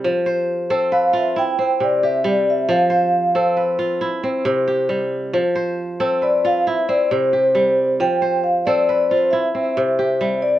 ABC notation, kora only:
X:1
M:12/8
L:1/8
Q:3/8=91
K:Flyd
V:1 name="Kora"
z c2 A B2 E C2 G3 | z c2 A B2 E C2 G3 | z c2 A B2 E C2 G3 | z c2 A B2 E C2 G3 |]
V:2 name="Kora" clef=bass
F,2 z C2 F z2 C,2 G,2 | F,2 z C2 F z2 C,2 G,2 | F,2 z C2 F z2 C,2 G,2 | F,2 z C2 F z2 C,2 G,2 |]